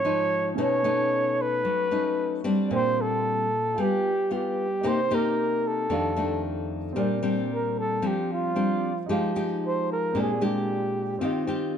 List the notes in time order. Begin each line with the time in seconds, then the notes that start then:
Already playing: G#2 F4 C5 C#5 D#5
0.04 F3 D#4 F4 D#5 C6
0.55 B2 A3 C#4 D#4 A4
0.59 B4 C#5 D#5
0.84 A3 C#4 D#4
1.41 B4
1.65 F#3
1.91 A3 C#4 D#4
2.44 G3 C4 D4
2.68 A#2 A#3 D4 C5
2.73 C5 G5
3.01 A4
3.74 G3 B3 F4 B4 G#5
3.80 G4 G5
4.31 B3 F4 G4
4.81 C3 A#3 D#4 G4 A#4 C5
4.87 C5 G5
5.11 A#3 D#4 G4 A#4
5.67 A4
5.88 F2 D#3 A3 D4 G4 A4 D5
5.93 F5
6.17 D#3 A3 D4
6.93 A#2 G3 C4 G4 A#4
6.97 D4 D5
7.23 G3 C4 D4
7.54 A#4
7.79 A4
8.02 F3 G3 C4 D4
8.07 G4
8.32 F4
8.56 G3 C4 D4
9.06 F3 G#3 D#4 G4
9.10 G4 F5
9.36 G#3 D#4 G4
9.66 C5
9.92 A#4
10.12 A#2 G#3 C4 D4 G4
10.17 G#4 A#4 D5
10.41 G#3 D4 G4
11.19 D#3 C4 F4 G4
11.23 G4 D#5
11.47 C4 F4 G4